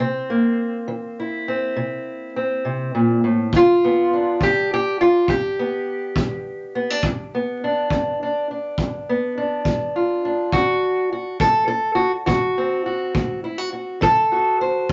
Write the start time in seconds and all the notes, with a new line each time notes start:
0.00 C3 C4
0.30 A#3
0.88 E3
1.20 E4
1.48 C4
1.76 C3
2.36 C4
2.65 C3
2.95 A#2
3.24 A2
3.53 G2 F4, kick
3.84 B3
4.13 D4
4.41 D3 G4, kick
4.74 G4
5.01 F4
5.28 G2 G4, kick
5.59 B3
6.16 D3, kick
6.75 B3
6.90 D4
7.03 G2, kick
7.35 B3
7.64 D4
7.90 D3, kick
8.23 D4
8.51 D4
8.78 G2, kick
9.09 B3
9.38 D4
9.65 D3, kick
9.96 F4
10.25 D4
10.52 D3 F#4, kick
11.12 F#4
11.40 A3 A4, kick
11.68 A4
11.95 F#4
12.26 D3 F#4, kick
12.58 C4
12.86 F#4
13.14 A3, kick
13.44 E4
13.58 F#4
13.73 F#4
14.01 D3 A4, kick
14.32 F#4
14.61 C5